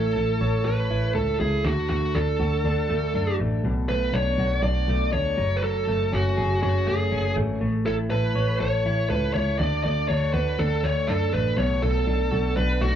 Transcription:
Already playing: A1 A3 E4 A4
0.16 A1 A4
0.41 A1 C#5
0.65 A1 A4 B4
0.90 A1 E4
1.15 C#2 A4
1.40 C#2 E4 G#4
1.64 D2 D3 F#4
1.89 D2 A3 F#4
2.14 D2 D4 A4
2.40 D2 F#4
2.64 D2 D4
2.90 D2 A3
3.14 F#2 D4
3.39 A1 A3
3.64 B1 B2
3.88 B1 A3 B4
4.13 B1 D4 C#5
4.38 B1 F#4
4.63 B1 D4 D5
4.88 B1 A3
5.13 D2 D4 C#5
5.38 F#1 F#3
5.57 B4
5.63 F#3 A4
5.88 F#1 A3
6.12 F#1 C#4 F#4
6.37 F#1 G#4
6.62 F#1 C#4 F#4
6.87 F#1 A3 G#4
7.12 F#1 C#4
7.36 G#1 A3
7.61 A1 A3
7.86 A1 E4 A4
8.10 A1 A4 B4
8.35 A1 C#5
8.60 A1 A4 C#5
8.85 A1 E4
9.10 C#2 A4 B4
9.34 C#2 E4 C#5
9.59 D2 D3 D5
9.84 D2 A3 D5
10.09 D2 D4 C#5
10.34 D2 F#4 B4
10.59 D2 D4 A4
10.83 D2 A3 C#5
11.08 F#2 D4 A4
11.33 A1 A3 B4
11.58 B1 B2 C#5
11.82 B1 A3 A4
12.07 B1 D4
12.31 B1 F#4
12.56 B1 D4 B4
12.81 B1 A3 F#4

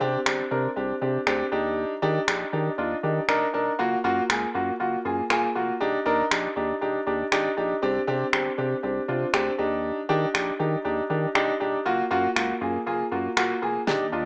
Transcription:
0.01 C3 C4 D4 G4
0.26 G1 C4 D4 G4, finger snap
0.51 C3 C4 D4 A#4
0.76 C2 C4 D4 G4
1.01 C3 C4 D4 G4
1.27 D2 C4 D4 G4, finger snap
1.52 D#2 D4 D#4 G4
2.02 D#3 D4 D#4 G4
2.28 A#1 D4 D#4 G4, finger snap
2.53 D#3 D4 D#4 G4
2.78 D#2 D4 D#4 F4
3.03 D#3 D4 D#4 G4
3.28 F1 D4 D#4 A#4, finger snap
3.54 D#1 D4 D#4 A#4
3.79 F#1 A#3 F4 F#4
4.04 F#2 A#3 F4 F#4
4.29 C#2 A#3 F4 G#4, finger snap
4.54 F#2 A#3 F4 F#4
4.80 F#1 A#3 F4 F#4
5.05 F#2 A#3 F4 G#4
5.30 D#1 A#3 F4 G#4, finger snap
5.55 F1 A#3 F4 F#4
5.80 D#1 D4 D#4 G4
6.06 D#2 D4 D#4 A#4
6.31 A#1 D4 D#4 G4, finger snap
6.56 D#2 D4 D#4 G4
6.81 D#1 D4 D#4 G4
7.07 D#2 D4 D#4 G4
7.32 G#1 D4 D#4 G4, finger snap
7.57 A#1 D4 D#4 G4
7.82 C2 C4 D4 G4
8.07 C3 C4 D4 G4
8.33 G1 C4 D4 G4, finger snap
8.58 C3 C4 D4 G4
8.83 C2 C4 D4 G4
9.08 C3 C4 D4 F4
9.33 D2 C4 D4 G4, finger snap
9.59 D#2 D4 D#4 G4
10.09 D#3 D4 D#4 G4
10.34 A#1 D4 D#4 G4, finger snap
10.59 D#3 D4 D#4 G4
10.85 D#2 D4 D#4 G4
11.10 D#3 D4 D#4 G4
11.35 F1 D4 D#4 G4, finger snap
11.60 D#1 D4 D#4 G4
11.85 F#1 A#3 F4 F#4
12.11 F#2 A#3 F4 F#4
12.36 C#2 A#3 F4 F#4, finger snap
12.61 F#2 A#3 F4 G#4
12.86 F#1 A#3 F4 G#4
13.12 F#2 A#3 F4 F#4
13.37 D#1 A#3 F4 F#4, finger snap
13.62 F1 A#3 F4 G#4
13.87 D#1 D#3 A#3 D4 D#4 G4, snare
14.12 D#2 D4 D#4 F4

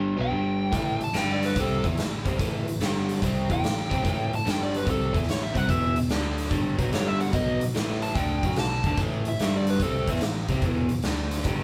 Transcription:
Already playing: G1 G2 D3 G3
0.17 B1 B2 F#3 B3
0.21 G5
0.30 G1 G2 D3 G3
0.71 A1 A2 E3 A3, kick, closed hi-hat
1.00 A1 A2 E3 A5, closed hi-hat
1.13 G1 G2 D3 G3 G5, snare, closed hi-hat
1.33 D5
1.43 B4, snare, closed hi-hat
1.56 C2 C3 G3 C4, kick, closed hi-hat
1.60 A4
1.84 E2 E3 B3 E4, kick, closed hi-hat
1.97 A1 A2 E3, snare, closed hi-hat
2.25 C2 C3 G3 C4, kick, closed hi-hat
2.39 A1 A2 E3 A3, kick, closed hi-hat
2.65 A1 A2 E3, closed hi-hat
2.79 G1 G2 D3 G3, snare, closed hi-hat
3.09 closed hi-hat
3.22 C2 C3 G3 C4, kick, closed hi-hat
3.50 E2 E3 B3 E4 G5, kick, closed hi-hat
3.62 A1 A2 E3, snare, closed hi-hat
3.89 C2 C3 G3 C4, kick, closed hi-hat
4.03 A1 A2 E3 A3, kick, closed hi-hat
4.31 A1 A2 E3, closed hi-hat
4.35 A5
4.45 G1 G2 D3 G3, snare, closed hi-hat
4.50 G5
4.63 D5
4.74 B4, closed hi-hat
4.85 C2 C3 G3 C4, kick, closed hi-hat
4.90 A4
5.13 E2 E3 B3 E4, kick, closed hi-hat
5.23 A1, snare
5.28 A2 E3 C#5, snare, closed hi-hat
5.43 E5
5.55 C2 C3 G3 C4 F#5, kick, closed hi-hat
5.68 E1 E2 B2 E3 E5, kick, closed hi-hat
5.96 E1 E2 B2, closed hi-hat
6.09 D2 D3 A3 D4, snare, closed hi-hat
6.38 snare, closed hi-hat
6.50 G1 G2 D3 G3, kick, closed hi-hat
6.78 B1 B2 F#3 B3, kick, closed hi-hat
6.90 G1 G2 D3 G3, snare, closed hi-hat
6.95 C#5
7.07 E5
7.21 F#5, closed hi-hat
7.32 B1 B2 F#3 B3 D#5, kick, closed hi-hat
7.60 B1 B2 F#3, closed hi-hat
7.75 A1 A2 E3 A3, snare, closed hi-hat
8.02 A5, closed hi-hat
8.15 D2 D3 A3 D4 G5, kick, closed hi-hat
8.43 F#2 F#3 C#4 F#4, kick, closed hi-hat
8.52 snare
8.56 B1 B2 F#3 A5, snare, closed hi-hat
8.84 D2 D3 A3 D4 A5, kick, closed hi-hat
8.97 A1 A2 E3 A3, kick, closed hi-hat
9.25 A1 A2 E3 E5, closed hi-hat
9.38 G1 G2 G3, snare, closed hi-hat
9.42 D3
9.57 D5
9.67 B4, closed hi-hat
9.79 C2 C3 G3 C4 A4, kick, closed hi-hat
10.07 E2 E3 B3 E4, kick, closed hi-hat
10.16 snare
10.21 A1 A2 E3, snare, closed hi-hat
10.48 C2 C3 G3 C4, kick, closed hi-hat
10.62 E1 E2 B2 E3, kick, closed hi-hat
10.89 E1 E2 B2, closed hi-hat
11.03 D2 D3 A3 D4, snare, closed hi-hat
11.31 snare, closed hi-hat
11.44 G1 G2 D3 G3, kick, closed hi-hat

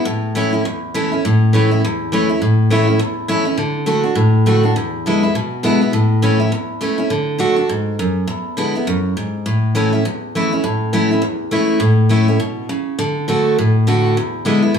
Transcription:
0.05 A2
0.35 E3 A3 C#4 E4
0.53 C#4 E4
0.94 E3 A3 C#4 E4
1.12 C#4 E4
1.25 A2
1.53 E3 A3 C#4 E4
1.71 C#4 E4
2.12 E3 A3 C#4 E4
2.29 C#4 E4
2.42 A2
2.70 E3 A3 C#4 E4
2.87 C#4 E4
2.99 E2
3.28 E3 A3 C#4 E4
3.45 C#4 E4
3.58 D3
3.86 D3 A3 D4 F#4
4.04 D4 F#4
4.15 A2
4.46 D3 A3 D4 F#4
4.63 D4 F#4
4.76 E2
5.06 D3 G#3 B3 E4
5.23 B3 E4
5.35 B2
5.63 D3 G#3 B3 E4
5.81 B3 E4
5.93 A2
6.22 E3 A3 C#4 E4
6.40 C#4 E4
6.52 E2
6.81 E3 A3 C#4 E4
6.98 C#4 E4
7.10 D3
7.38 D3 A3 D4 F#4
7.56 D4 F#4
7.69 G#2
7.99 F#2
8.27 E2
8.57 D3 G#3 B3 E4
8.75 B3 E4
8.87 F#2
9.17 G#2
9.46 A2
9.75 E3 A3 C#4 E4
9.93 C#4 E4
10.35 E3 A3 C#4 E4
10.52 C#4 E4
10.64 A2
10.93 E3 A3 C#4 E4
11.11 C#4 E4
11.22 E2
11.51 E3 A3 C#4 E4
11.80 A2
12.09 E3 A3 C#4 E4
12.28 C#4 E4
12.40 B2
12.69 C#3
12.99 D3
13.28 D3 A3 D4 F#4
13.59 A2
13.87 D3 A3 D4 F#4
14.17 E2
14.45 D3 G#3 B3 E4
14.62 B3 E4
14.74 B2

